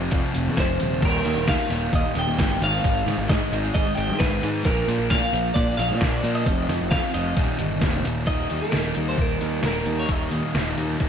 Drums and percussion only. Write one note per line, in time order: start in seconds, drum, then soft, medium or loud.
0.11 kick loud
0.11 open hi-hat medium
0.35 open hi-hat medium
0.57 kick loud
0.57 snare loud
0.57 open hi-hat medium
0.80 open hi-hat medium
1.02 kick loud
1.02 crash medium
1.25 open hi-hat medium
1.48 kick loud
1.48 snare loud
1.48 open hi-hat medium
1.70 open hi-hat medium
1.93 kick loud
1.93 open hi-hat medium
2.15 open hi-hat medium
2.39 kick loud
2.39 snare loud
2.39 open hi-hat medium
2.62 open hi-hat medium
2.84 kick loud
2.84 open hi-hat medium
3.08 snare soft
3.08 open hi-hat medium
3.29 kick loud
3.29 snare loud
3.29 open hi-hat medium
3.53 open hi-hat medium
3.75 kick loud
3.75 open hi-hat medium
3.97 open hi-hat medium
4.20 kick loud
4.20 snare loud
4.20 open hi-hat medium
4.43 open hi-hat medium
4.65 kick loud
4.65 open hi-hat medium
4.88 open hi-hat medium
5.10 kick loud
5.10 snare loud
5.10 open hi-hat medium
5.33 open hi-hat medium
5.56 kick loud
5.56 open hi-hat medium
5.79 open hi-hat medium
6.01 kick loud
6.01 snare loud
6.01 open hi-hat medium
6.24 open hi-hat medium
6.46 kick loud
6.46 open hi-hat medium
6.69 snare soft
6.69 open hi-hat medium
6.92 kick loud
6.92 snare loud
6.92 open hi-hat medium
7.14 open hi-hat medium
7.37 kick loud
7.37 open hi-hat medium
7.59 open hi-hat medium
7.82 kick loud
7.82 snare loud
7.82 open hi-hat medium
8.05 open hi-hat medium
8.27 kick loud
8.27 closed hi-hat medium
8.50 closed hi-hat medium
8.72 snare loud
8.72 closed hi-hat medium
8.95 closed hi-hat medium
9.18 kick loud
9.18 closed hi-hat medium
9.41 closed hi-hat medium
9.63 snare loud
9.63 closed hi-hat medium
9.86 closed hi-hat medium
10.09 kick medium
10.09 closed hi-hat medium
10.32 closed hi-hat medium
10.55 snare medium
10.55 closed hi-hat medium
10.78 closed hi-hat medium
11.00 kick loud
11.00 closed hi-hat medium